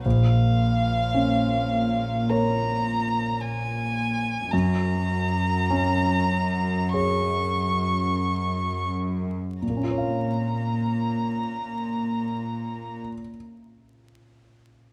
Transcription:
<<
  \new Staff \with { instrumentName = "Violin" } { \time 4/4 \key bes \minor \tempo 4 = 48 f''2 bes''4 aes''4 | bes''2 des'''4. r8 | bes''1 | }
  \new Staff \with { instrumentName = "Grand piano" } { \time 4/4 \key bes \minor bes,,4 des'4 <bes' des''>2 | ges,4 des'4 <aes' des''>2 | <bes, bes des' f' des'' f''>1 | }
  \new Staff \with { instrumentName = "Cello section" } { \clef bass \time 4/4 \key bes \minor bes,1 | ges,1 | bes,1 | }
>>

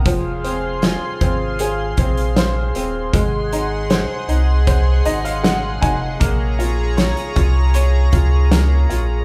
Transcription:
<<
  \new Staff \with { instrumentName = "Analog synth pad" } { \time 4/4 \key f \phrygian \tempo 4 = 78 <aes' f'' c'''>1 | <aes' ges'' c'''>1 | <aes' des'' bes''>1 | }
  \new Staff \with { instrumentName = "Upright piano" } { \time 4/4 \key f \phrygian << { r1 | r2 r8 ees''16 f''16 ges''8 aes''8 | r1 | } \\ { f8 c'8 f'8 c'8 aes'8 c'8 c''8 c'8 | aes8 ees'8 c''8 ees'8 c''8 ees'8 aes8 ees'8 | bes8 f'8 des''8 f'8 des''8 f'8 bes8 f'8 | } >> }
  \new Staff \with { instrumentName = "Sub bass" } { \clef bass \time 4/4 \key f \phrygian f,,4~ f,,16 r16 aes,,4 bes,,4 ees,,8 | aes,,4~ aes,,16 r16 c,4 aes,,4 f,,8 | bes,,4~ bes,,16 r16 c,4 des,4 bes,,8 | }
  \new DrumStaff \with { instrumentName = "Drums" } \drummode { \time 4/4 <hh bd>8 hh8 <hh sn>8 <hh bd>8 hh8 <hh bd>16 hh16 <hh sn>8 hh8 | <hh bd>8 hh8 <hh sn>8 hh8 <hh bd>8 hh16 hh16 <hh sn>8 <hh bd>8 | <hh bd>8 hh8 <hh sn>16 hh16 <hh bd>8 hh8 <hh bd>8 <hh sn>8 hh8 | }
>>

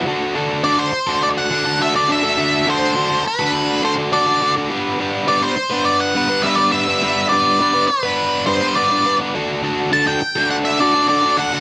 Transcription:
<<
  \new Staff \with { instrumentName = "Lead electric guitar" } { \time 4/4 \key d \mixolydian \tempo 4 = 103 r4 d''16 c''8. d''16 fis''8. e''16 d''16 e''8~ | e''8 c''4 b'4 c''8 d''8. r16 | r4 d''16 c''8. d''16 fis''8. e''16 d''16 e''8~ | e''8 d''4 b'4 c''8 d''8. r16 |
r4 a''16 g''8. fis''16 e''16 d''8 d''8 fis''8 | }
  \new Staff \with { instrumentName = "Overdriven electric guitar" } { \time 4/4 \key d \mixolydian <d d' fis' a'>8 <d d' fis' a'>8 <d d' fis' a'>16 <d' fis' a'>8 <d' fis' a'>8. <d d' fis' a'>16 <d' fis' a'>16 <d d' fis' a'>16 <d' fis' a'>16 <d d' fis' a'>16 <d' fis' a'>16 | <d d' fis' a'>8 <d d' fis' a'>8 <d d' fis' a'>16 <d' fis' a'>8 <d' fis' a'>8. <d d' fis' a'>16 <d' fis' a'>16 <d d' fis' a'>16 <d' fis' a'>16 <d d' fis' a'>16 <d' fis' a'>16 | <g b d' b'>8 <g b d' b'>8 <g b d' b'>16 <b d' b'>8 <b d' b'>8. <g b d' b'>16 <b d' b'>16 <g b d' b'>16 <b d' b'>16 <g b d' b'>16 <b d' b'>16 | <g b d' b'>8 <g b d' b'>8 <g b d' b'>16 <b d' b'>8 <b d' b'>8. <g b d' b'>16 <b d' b'>16 <g b d' b'>16 <b d' b'>16 <g b d' b'>16 <b d' b'>16 |
<d d' fis' a'>8 <d d' fis' a'>8 <d d' fis' a'>16 <d' fis' a'>8 <d' fis' a'>8. <d d' fis' a'>16 <d' fis' a'>16 <d d' fis' a'>16 <d' fis' a'>16 <d d' fis' a'>16 <d' fis' a'>16 | }
>>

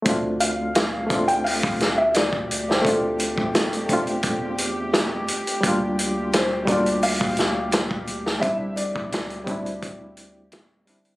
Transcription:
<<
  \new Staff \with { instrumentName = "Felt piano" } { \time 4/4 \key d \minor \tempo 4 = 86 r8 f''8 f''8. g''16 f''8. e''16 d''8. c''16 | a'4 r2. | r4 c''8 d''8 f''2 | e''8 d''2 r4. | }
  \new Staff \with { instrumentName = "Synth drone" } { \time 4/4 \key d \minor g'1~ | g'1~ | g'1~ | g'1 | }
  \new Staff \with { instrumentName = "Reed electric piano" } { \time 4/4 \key d \minor <a c' d' f'>4. <a c' d' f'>2~ <a c' d' f'>8 | <a c' d' f'>4. <a c' d' f'>2~ <a c' d' f'>8 | <g bes d' f'>4. <g bes d' f'>2~ <g bes d' f'>8 | <g c' d' e'>4. <g c' d' e'>2 <g c' d' e'>8 | }
  \new Staff \with { instrumentName = "Analog synth bass" } { \clef bass \time 4/4 \key d \minor d,1 | d,4 e,2~ e,8 r8 | d,1 | c,4 d,2 e,8 g,,8 | }
  \new DrumStaff \with { instrumentName = "Drums" } \drummode { \time 4/4 <hh bd>8 hh8 <hh sn>8 <hh bd>16 hh16 hho16 bd16 <hh sn>8 <hh sn>16 bd16 hh16 sn16 | <hh bd>8 hh16 bd16 <hh sn>16 hh16 <hh bd>16 hh16 <hh bd>8 hh8 <hh sn>8 hh16 hh16 | <hh bd>8 hh8 <hh sn>8 <hh bd>16 hh16 hho16 bd16 <hh sn>8 <hh sn>16 bd16 hh16 sn16 | <hh bd>8 hh16 bd16 <hh sn>16 hh16 <hh bd>16 hh16 <hh bd>8 hh8 <hh sn>8 hh16 hh16 | }
>>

